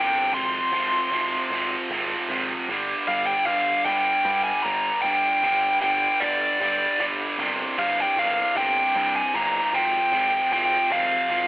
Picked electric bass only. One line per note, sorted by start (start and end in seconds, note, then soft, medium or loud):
0.00 0.33 G1 loud
0.33 0.59 G#1 loud
0.72 0.98 G#1 medium
1.11 1.37 G#1 medium
1.50 1.76 G#1 loud
1.89 2.15 G#1 medium
2.28 2.55 G#1 medium
2.68 2.94 G1 medium
3.07 3.33 G1 medium
3.46 3.72 G1 medium
3.85 4.11 G1 medium
4.25 4.51 G2 loud
4.64 4.90 G1 loud
5.04 5.29 G1 medium
5.43 5.69 G1 medium
5.82 6.08 G1 medium
6.21 6.47 G1 loud
6.60 6.86 G1 loud
7.00 7.25 G1 loud
7.38 7.64 G1 loud
7.78 8.04 G1 loud
8.16 8.42 G1 loud
8.55 8.81 G1 loud
8.95 9.21 G2 loud
9.34 9.60 G1 medium
9.73 9.99 G#1 loud
10.12 10.38 G#1 medium
10.51 10.77 G#1 loud
10.90 11.16 G#1 medium
11.29 11.47 G#1 medium